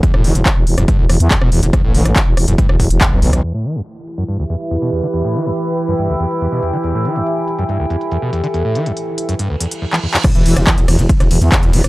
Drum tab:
CC |----------------|----------------|----------------|----------------|
RD |----------------|----------------|----------------|----------------|
HH |x-oxx-oxx-oxx-ox|x-oxx-oxx-oxx-ox|x-xxx-xxx-xxx-xx|x-xxx-xxx-xxx-xx|
CP |----x-------x---|----x-------x---|----------------|----------------|
SD |-r--r--r--r--r--|r--r--r--r--r--r|----------------|----------------|
BD |o---o---o---o---|o---o---o-o-o---|----------------|----------------|

CC |----------------|----------------|x---------------|
RD |----------------|----------------|--x---x---x---x-|
HH |x-xxx-xxx-xxx-xx|x-xxx-xxx-xx----|xxoxxxoxxxoxxxox|
CP |----------------|-------------x-x|----x-------x---|
SD |----------------|----------------|r--r--r--r--r--r|
BD |----------------|----------------|o---o---o---o---|